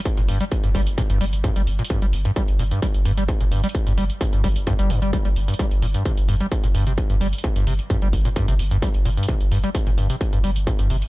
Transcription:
<<
  \new Staff \with { instrumentName = "Acid bass" } { \clef bass \time 4/4 \key g \minor \tempo 4 = 130 r16 bes,16 g,16 g16 r16 g,16 g16 r16 bes,16 g,16 g16 r16 g,16 g16 r16 bes,16 | g,16 g16 r16 g,16 g16 r16 bes,16 g,16 g16 r16 g,16 g16 r16 bes,16 g,16 g16 | r16 g,16 g16 r16 bes,16 g,16 g16 r16 g,16 g16 g,16 g16 g16 g16 r16 g,16 | g16 r16 bes,16 g,16 c16 r16 g,16 g16 r16 bes,16 g,16 c16 r16 g,16 g16 r16 |
bes,16 g,16 c16 r16 g,16 g16 r16 bes,16 g,16 c16 r16 g,16 g16 r16 bes,16 g,16 | c16 r16 g,16 g16 r16 bes,16 g,16 c16 r16 g,16 g16 r16 bes,16 g,16 c16 r16 | }
  \new Staff \with { instrumentName = "Sub bass" } { \clef bass \time 4/4 \key g \minor r16 g,,16 g,,16 r8 g,,16 g,,16 r8 g,,16 g,,16 g,,16 r16 g,,16 g,,16 r16 | r16 g,,16 g,,16 r8 g,,16 g,,16 r8 g,,16 g,,16 g,,16 r16 g,,16 g,,16 r16 | r16 g,,16 g,,16 r8 g,,16 g,,16 r8 g,,16 g,,16 g,,16 r16 g,,16 g,,16 r16 | r16 g,,16 g,,16 r8 g,,16 g,,16 r8 g,,16 g,,16 g,,16 r16 g,,16 g,,16 r16 |
r16 g,,16 g,,16 r8 g,,16 g,,16 r8 g,,16 g,,16 g,,16 r16 g,,16 g,,16 r16 | r16 g,,16 g,,16 r8 g,,16 g,,16 r8 g,,16 g,,16 g,,16 r16 g,,16 g,,16 r16 | }
  \new DrumStaff \with { instrumentName = "Drums" } \drummode { \time 4/4 <hh bd>16 hh16 hho16 hh16 <hh bd>16 hh16 <hho bd>16 hh16 <hh bd>16 hh16 hho16 hh16 <hh bd>16 hh16 hho16 hh32 hh32 | <hh bd>16 hh16 hho16 hh16 <hh bd>16 hh16 hho16 hh16 <hh bd>16 hh16 hho16 hh16 <hh bd>16 hh16 hho16 hh32 hh32 | <hh bd>16 hh16 hho16 hh16 <hh bd>16 hh16 <hho bd>16 hh16 <hh bd>16 hh16 hho16 hh16 <hh bd>16 hh16 hho16 hh32 hh32 | <hh bd>16 hh16 hho16 hh16 <hh bd>16 hh16 hho16 hh16 <hh bd>16 hh16 hho16 hh16 <hh bd>16 hh16 hho16 hh32 hh32 |
<hh bd>16 hh16 hho16 hh16 <hh bd>16 hh16 <hho bd>16 hh16 <hh bd>16 hh16 hho16 hh16 <hh bd>16 hh16 hho16 hh32 hh32 | <hh bd>16 hh16 hho16 hh16 <hh bd>16 hh16 hho16 hh16 <hh bd>16 hh16 hho16 hh16 <hh bd>16 hh16 hho16 hh16 | }
>>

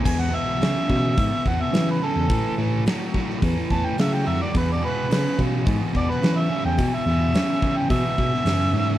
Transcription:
<<
  \new Staff \with { instrumentName = "Harmonica" } { \time 4/4 \key a \major \tempo 4 = 107 gis''16 fis''16 e''2 fis''16 e''8 b'16 a'8~ | a'8 r2 a''16 g''16 e''16 g''16 e''16 d''16 | b'16 d''16 b'8 b'8 r4 d''16 b'8 e''8 g''16~ | g''16 e''4. g''16 e''2 | }
  \new Staff \with { instrumentName = "Overdriven electric guitar" } { \clef bass \time 4/4 \key a \major <e, b,>8 <e, b,>8 <e, cis>8 <e, cis>8 <e, b,>8 <e, b,>8 <e, cis>8 <e, cis>8 | <a, e>8 <a, e>8 <a, fis>8 <a, fis>8 <a, e>8 <a, e>8 <a, fis>8 <a, fis>8 | <e, b,>8 <e, b,>8 <e, cis>8 <e, cis>8 <e, b,>8 <e, b,>8 <e, cis>8 <e, cis>8 | <e, b,>8 <e, b,>8 <e, cis>8 <e, cis>8 <e, b,>8 <e, b,>8 <e, cis>8 <e, cis>8 | }
  \new Staff \with { instrumentName = "Tine electric piano" } { \clef bass \time 4/4 \key a \major e,8 r8 cis16 r16 b,8 gis,16 r16 e,16 r16 e8 r16 e,16 | a,16 r16 a,8 r4 e,16 r16 e,16 r16 cis8 f,16 r16 | e,8 r8 cis16 r16 b,8 gis,16 r16 e,16 r16 e8 r16 e,16 | b,16 r16 e,8 r4 b,16 r16 b,16 r16 fis,8 gis,8 | }
  \new DrumStaff \with { instrumentName = "Drums" } \drummode { \time 4/4 <cymc bd>4 <hho sn>8 bd8 <hho bd>8 bd8 <hho sn>4 | <hho bd>4 <hho sn>8 bd16 sn16 <hho bd>8 bd8 <hho sn>4 | <hho bd>4 <hho sn>8 bd8 <hho bd>8 bd16 sn16 <hho sn>4 | <hho bd>4 <hho sn>8 bd8 <hho bd>8 bd16 sn16 <hho sn>4 | }
>>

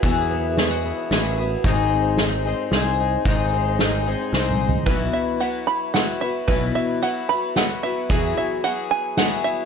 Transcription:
<<
  \new Staff \with { instrumentName = "Five-string banjo" } { \time 3/4 \key b \mixolydian \tempo 4 = 112 r2. | r2. | r2. | b'8 e''8 fis''8 b''8 fis''8 e''8 |
b'8 e''8 fis''8 b''8 fis''8 e''8 | gis'8 e''8 fis''8 gis''8 fis''8 e''8 | }
  \new Staff \with { instrumentName = "Steel-string acoustic guitar" } { \time 3/4 \key b \mixolydian << { b8 b8 dis'16 fis'16 b8 b'8 fis'8 | r8 bis8 dis'8 bis8 bis'8 dis'8~ | dis'8 bis8 dis'8 bis8 bis'8 dis'8 | r2. |
r2. | r2. | } \\ { e2. | gis,2. | gis,2. | r2. |
r2. | r2. | } >> }
  \new Staff \with { instrumentName = "Twelve-string acoustic guitar" } { \time 3/4 \key b \mixolydian <e fis b e' gis'>4 <fis b e' gis'>4 <fis b e' gis'>8 <b e' gis'>8 | <gis, dis gis bis dis' gis'>4 <gis bis dis' gis'>8 <gis bis dis' gis'>8 <gis bis dis' gis'>4 | <gis, dis gis bis dis' gis'>4 <gis bis dis' gis'>8 <gis bis dis' gis'>8 <gis bis dis' gis'>4 | <b, e fis b e' b'>4 <fis b e' b'>4 <fis b e' b'>8 <fis b e' b'>8 |
<b, e fis b e' b'>4 <fis b e' b'>8 <fis b e' b'>8 <fis b e' b'>8 <fis b e' b'>8 | <e fis b e' gis'>4 <fis b e' gis'>4 <fis b e' gis'>4 | }
  \new Staff \with { instrumentName = "Picked electric bass" } { \clef bass \time 3/4 \key b \mixolydian e,2 a,,4 | gis,,2 bis,,4 | gis,,2 bis,,4 | b,,8 r2 r8 |
b,,8 r2 r8 | e,8 r2 r8 | }
  \new DrumStaff \with { instrumentName = "Drums" } \drummode { \time 3/4 bd8 cymr8 <cymr sn>4 <cymr sn>4 | bd4 <cymr sn>4 <cymr sn>4 | <bd cymr>8 cymr8 <cymr sn>4 \tuplet 3/2 { sn8 toml8 tomfh8 } | <hh bd>4 hh4 <hh sn>4 |
<hh bd>4 hh4 <hh sn>4 | <hh bd>4 hh4 <hh sn>4 | }
>>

